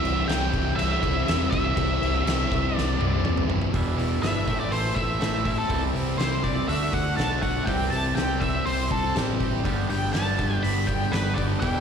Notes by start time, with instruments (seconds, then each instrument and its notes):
Already playing: distorted electric guitar C3 E3 G3 C4 E4, lead electric guitar E5
0.04 picked electric bass C2, crash
0.28 picked electric bass C2, distorted electric guitar E3 G3 C4 E4, lead electric guitar G5, snare, crash
0.54 picked electric bass C2, kick, crash
0.76 picked electric bass C2, lead electric guitar E5, crash
1.02 picked electric bass C2, distorted electric guitar G3 C4 E4, kick, crash
1.27 picked electric bass E2, distorted electric guitar C3 E3 G3 C4 E4, snare, crash
1.51 picked electric bass C2, distorted electric guitar G3 C4 E4, lead electric guitar E5, kick, crash
1.75 picked electric bass C2, distorted electric guitar C3 E3 G3 C4 E4, kick, crash
2.02 picked electric bass C2, crash
2.25 picked electric bass C2, distorted electric guitar E3 G3 C4 E4, snare, crash
2.52 picked electric bass C2, kick, crash
2.75 picked electric bass C2, lead electric guitar D5, snare
2.99 picked electric bass C2, distorted electric guitar G3 C4 E4, high tom
3.23 picked electric bass E2, distorted electric guitar C3 E3 G3 C4 E4, mid tom
3.37 mid tom
3.47 picked electric bass F#2, distorted electric guitar G3 C4 E4, floor tom
3.61 floor tom
3.73 picked electric bass E1, distorted electric guitar E2 B2 E3, clean electric guitar G3 D4 E4, kick, open hi-hat
3.97 picked electric bass E1, distorted electric guitar E2 B2 E3, clean electric guitar G3 D4 E4, open hi-hat
4.22 picked electric bass G1, distorted electric guitar E2 B2 E3, clean electric guitar G3 D4 E4, lead electric guitar E5, snare, open hi-hat
4.46 picked electric bass A1, distorted electric guitar A2 E3 A3, clean electric guitar C4 E4, kick, open hi-hat
4.60 lead electric guitar D5
4.71 picked electric bass A1, distorted electric guitar A2 E3 A3, lead electric guitar C5, open hi-hat
4.95 picked electric bass A1, distorted electric guitar A2 E3 A3, lead electric guitar E5, kick, open hi-hat
5.20 picked electric bass A1, distorted electric guitar A2 E3 A3, clean electric guitar C4 E4, snare, open hi-hat
5.44 distorted electric guitar A2 E3 A3, clean electric guitar C4 E4, kick, open hi-hat
5.58 lead electric guitar A4
5.68 picked electric bass C2, distorted electric guitar C3 G3 C4, clean electric guitar E3 E4, kick, open hi-hat
5.93 picked electric bass C2, distorted electric guitar C3 G3 C4, clean electric guitar E4, open hi-hat
6.17 picked electric bass C2, distorted electric guitar C3 G3 C4, clean electric guitar E3 E4, lead electric guitar C5, open hi-hat
6.21 snare
6.42 distorted electric guitar C3 G3 C4, clean electric guitar E4, lead electric guitar D5, kick, open hi-hat
6.67 picked electric bass D2, distorted electric guitar D3 A3 D4, clean electric guitar F#4, lead electric guitar E5, open hi-hat
6.92 picked electric bass D2, distorted electric guitar D3 A3 D4, lead electric guitar F#5, kick, open hi-hat
7.17 picked electric bass B1, distorted electric guitar D3 A3 D4, clean electric guitar F#4, lead electric guitar A5, snare, open hi-hat
7.42 distorted electric guitar D3 A3 D4, clean electric guitar F#4, lead electric guitar F#5, kick, open hi-hat
7.66 picked electric bass C2, distorted electric guitar C3 G3 C4, clean electric guitar E3 G4, lead electric guitar G5, kick, open hi-hat
7.90 picked electric bass C2, distorted electric guitar C3 G3 C4, clean electric guitar G4, lead electric guitar A5, open hi-hat
8.15 picked electric bass C2, distorted electric guitar C3 G3 C4, clean electric guitar E3 G4, lead electric guitar G5, snare, open hi-hat
8.40 distorted electric guitar C3 G3 C4, clean electric guitar G4, lead electric guitar E5, kick, open hi-hat
8.65 picked electric bass C2, distorted electric guitar C3 G3 C4, lead electric guitar C5, open hi-hat
8.89 picked electric bass C2, distorted electric guitar C3 G3 C4, lead electric guitar A4, kick, open hi-hat
9.15 picked electric bass A1, distorted electric guitar C3 G3 C4, clean electric guitar E3 G4, snare, open hi-hat
9.39 distorted electric guitar C3 G3 C4, clean electric guitar G4, kick, open hi-hat
9.64 picked electric bass G1, distorted electric guitar G2 D3 G3, clean electric guitar B3 D4 G4, kick, open hi-hat
9.88 picked electric bass G1, distorted electric guitar G2 D3 G3, clean electric guitar B3 D4 G4, lead electric guitar G5, open hi-hat
10.13 picked electric bass G1, distorted electric guitar G2 D3 G3, clean electric guitar B3 D4 G4, lead electric guitar A5, snare, open hi-hat
10.38 distorted electric guitar G2 D3 G3, clean electric guitar B3 D4 G4, kick, open hi-hat
10.63 picked electric bass G1, distorted electric guitar G2 D3 G3, lead electric guitar B5, open hi-hat
10.87 picked electric bass G1, distorted electric guitar G2 D3 G3, lead electric guitar G5, kick, open hi-hat
11.12 picked electric bass G1, distorted electric guitar G2 D3 G3, clean electric guitar B3 D4 G4, lead electric guitar B4, snare, open hi-hat
11.34 distorted electric guitar G2, clean electric guitar B3 D4 G4, lead electric guitar D5, kick, open hi-hat
11.38 distorted electric guitar D3 G3
11.60 picked electric bass E1, distorted electric guitar E2 B2 E3, clean electric guitar G3 D4 E4, lead electric guitar G5, kick, open hi-hat